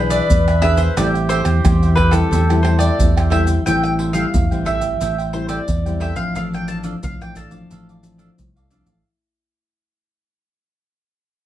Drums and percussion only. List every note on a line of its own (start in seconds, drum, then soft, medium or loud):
0.11 pandeiro medium
0.11 maracas medium
0.30 pandeiro medium
0.30 maracas medium
0.30 surdo medium
0.48 pandeiro soft
0.48 tamborim medium
0.48 maracas soft
0.62 pandeiro medium
0.62 tamborim medium
0.77 pandeiro medium
0.77 maracas medium
0.97 pandeiro medium
0.97 tamborim medium
0.97 maracas medium
0.97 surdo medium
1.15 pandeiro soft
1.15 maracas soft
1.30 pandeiro medium
1.30 maracas medium
1.45 pandeiro medium
1.45 tamborim medium
1.45 maracas medium
1.65 pandeiro medium
1.65 tamborim medium
1.65 maracas medium
1.65 surdo loud
1.83 pandeiro soft
1.83 maracas soft
1.97 pandeiro medium
1.97 tamborim medium
1.97 surdo medium
2.13 pandeiro medium
2.13 tamborim medium
2.13 maracas medium
2.33 pandeiro medium
2.33 maracas medium
2.33 surdo medium
2.50 pandeiro soft
2.50 tamborim medium
2.50 maracas soft
2.65 pandeiro medium
2.65 tamborim medium
2.80 pandeiro medium
2.80 maracas medium
3.00 pandeiro medium
3.00 maracas medium
3.00 surdo medium
3.17 pandeiro soft
3.17 tamborim medium
3.17 maracas soft
3.32 pandeiro medium
3.32 tamborim medium
3.47 pandeiro medium
3.47 maracas medium
3.67 pandeiro medium
3.67 maracas medium
3.67 surdo medium
3.85 pandeiro soft
3.85 maracas soft
3.99 pandeiro medium
4.14 pandeiro medium
4.14 maracas medium
4.34 pandeiro medium
4.34 maracas medium
4.34 surdo medium
4.52 pandeiro soft
4.52 maracas soft
4.66 pandeiro medium
4.66 surdo medium
4.82 pandeiro soft
4.82 maracas medium
5.01 pandeiro medium
5.01 maracas medium
5.01 surdo medium
5.19 pandeiro soft
5.19 maracas soft
5.33 pandeiro medium
5.49 pandeiro medium
5.49 maracas medium
5.68 pandeiro medium
5.68 maracas medium
5.68 surdo medium
5.86 pandeiro soft
5.86 maracas soft
6.01 pandeiro medium
6.16 pandeiro medium
6.16 maracas medium
6.35 pandeiro medium
6.35 maracas medium
6.35 surdo medium
6.54 pandeiro soft
6.54 maracas soft
6.68 pandeiro medium
6.68 maracas medium
6.84 pandeiro medium
6.84 maracas medium
7.03 pandeiro medium
7.03 maracas medium
7.03 surdo medium
7.21 pandeiro soft
7.21 maracas soft
7.36 pandeiro medium
7.36 maracas medium
7.36 surdo medium
7.51 pandeiro soft
7.51 maracas medium
7.71 pandeiro medium
7.71 maracas medium
7.71 surdo medium
7.89 pandeiro soft
7.89 maracas soft
8.03 pandeiro medium
8.03 maracas medium
8.19 pandeiro medium
8.19 maracas medium
8.39 pandeiro medium
8.39 maracas medium
8.39 surdo medium
8.57 pandeiro soft
8.57 maracas soft
8.71 pandeiro medium
8.71 maracas medium
8.86 pandeiro soft
8.86 maracas medium